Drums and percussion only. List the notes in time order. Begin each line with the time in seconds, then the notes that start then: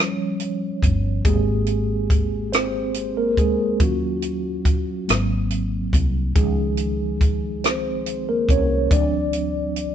0.00 cross-stick
0.40 closed hi-hat
0.82 kick, closed hi-hat
1.25 kick, closed hi-hat
1.66 closed hi-hat
2.10 kick, closed hi-hat
2.53 cross-stick, closed hi-hat
2.94 closed hi-hat
3.37 kick, closed hi-hat
3.80 kick, closed hi-hat
4.22 closed hi-hat
4.65 kick, closed hi-hat
5.09 cross-stick, closed hi-hat
5.50 closed hi-hat
5.93 kick, closed hi-hat
6.36 kick, closed hi-hat
6.77 closed hi-hat
7.21 kick, closed hi-hat
7.64 cross-stick, closed hi-hat
8.06 closed hi-hat
8.49 kick, closed hi-hat
8.91 kick, closed hi-hat
9.33 closed hi-hat
9.76 closed hi-hat